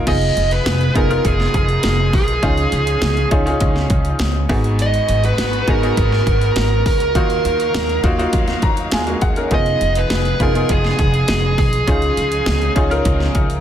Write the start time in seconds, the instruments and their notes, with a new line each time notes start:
0.06 upright bass F1, string section F3 B3 D#4 G#4, upright piano B3 D#4 F4 G#4, lead electric guitar D#5, kick, closed hi-hat, crash
0.22 closed hi-hat
0.37 upright bass F1, closed hi-hat
0.51 lead electric guitar B4, closed hi-hat
0.66 upright bass F1, snare, closed hi-hat
0.81 closed hi-hat
0.95 upright bass F1, upright piano B3 D#4 F4 G#4, lead electric guitar A#4, kick, closed hi-hat
1.09 upright piano B3 D#4 F4 A#4, closed hi-hat
1.25 upright bass F1, lead electric guitar G#4, kick, closed hi-hat
1.40 snare
1.54 upright bass F1, lead electric guitar G#4, kick, closed hi-hat
1.69 closed hi-hat
1.83 upright bass F1, snare, closed hi-hat
2.13 upright bass B1, lead electric guitar G#4, kick, open hi-hat
2.28 closed hi-hat
2.42 upright bass C#2, upright piano C#3 C#4 D#4 F4 G#4, string section C#4, kick, closed hi-hat
2.57 closed hi-hat
2.72 upright bass C#2, closed hi-hat
2.87 closed hi-hat
3.02 upright bass C#2, snare, closed hi-hat
3.17 closed hi-hat
3.31 upright bass C#2, upright piano C#4 D#4 F4 G#4, kick, closed hi-hat
3.46 upright piano C#4 D#4 F4 G#4, closed hi-hat
3.60 upright bass C#2, kick, closed hi-hat
3.76 snare
3.90 upright bass C#2, kick, closed hi-hat
4.05 closed hi-hat
4.19 upright bass C#2, snare, closed hi-hat
4.49 upright bass G#1, upright piano G#2 B3 D#4 F#4 G#4, string section G#3 B3 F#4, kick, open hi-hat
4.64 closed hi-hat
4.79 lead electric guitar D#5, closed hi-hat
4.94 closed hi-hat
5.09 upright bass G#1, closed hi-hat
5.24 lead electric guitar B4, closed hi-hat
5.38 upright bass G#1, snare, closed hi-hat
5.53 closed hi-hat
5.67 upright bass G#1, upright piano B3 D#4 F#4 G#4, lead electric guitar A#4, kick, closed hi-hat
5.82 upright piano B3 D#4 F#4 G#4, closed hi-hat
5.97 upright bass G#1, kick, closed hi-hat
6.12 snare
6.27 upright bass G#1, kick, closed hi-hat
6.41 closed hi-hat
6.56 upright bass G#1, snare, closed hi-hat
6.86 upright bass C#2, lead electric guitar A#4, kick, open hi-hat
7.00 closed hi-hat
7.15 upright bass D#2, upright piano D#3 A#3 D#4 F4 F#4, string section F#3 D#4 F5, kick, closed hi-hat
7.30 closed hi-hat
7.45 upright bass D#2, closed hi-hat
7.60 closed hi-hat
7.74 upright bass D#2, snare, closed hi-hat
7.89 closed hi-hat
8.03 upright bass D#2, upright piano A#3 D#4 F4 F#4, kick, closed hi-hat
8.18 upright piano A#3 D#4 F4 F#4, closed hi-hat
8.33 upright bass D#2, kick, closed hi-hat
8.48 snare, closed hi-hat
8.62 upright bass D#2, upright piano A#5, kick, closed hi-hat
8.77 closed hi-hat
8.91 upright bass D#2, upright piano G#3 F4 G#5, snare, closed hi-hat
9.07 upright piano A#3 F#4, closed hi-hat
9.21 upright bass D#2, upright piano G#4 F#5, kick, closed hi-hat
9.36 upright piano C#4 A#4, closed hi-hat
9.51 upright bass F1, string section F3 B3 G#4, upright piano B3 D#4 F4 G#4, lead electric guitar D#5, kick, closed hi-hat
9.66 closed hi-hat
9.81 upright bass F1, closed hi-hat
9.95 lead electric guitar B4, closed hi-hat
10.10 upright bass F1, snare, closed hi-hat
10.25 closed hi-hat
10.40 upright bass F1, upright piano B3 D#4 F4 G#4, lead electric guitar A#4, kick, closed hi-hat
10.54 upright piano B3 D#4 F4 G#4, closed hi-hat
10.69 upright bass F1, lead electric guitar G#4, kick, closed hi-hat
10.84 snare
10.99 upright bass F1, lead electric guitar G#4, kick, closed hi-hat
11.14 closed hi-hat
11.28 upright bass F1, snare, closed hi-hat
11.58 upright bass B1, lead electric guitar G#4, kick, open hi-hat
11.73 closed hi-hat
11.87 upright bass C#2, upright piano C#3 C#4 D#4 F4 G#4, string section C#4 D#4, kick, closed hi-hat
12.02 closed hi-hat
12.17 upright bass C#2, closed hi-hat
12.32 closed hi-hat
12.46 upright bass C#2, snare, closed hi-hat
12.62 closed hi-hat
12.75 upright bass C#2, upright piano C#4 D#4 F4 G#4, kick, closed hi-hat
12.90 upright piano C#4 D#4 F4 A#4, closed hi-hat
13.05 upright bass C#2, kick, closed hi-hat
13.20 snare
13.35 upright bass C#2, kick, closed hi-hat
13.50 closed hi-hat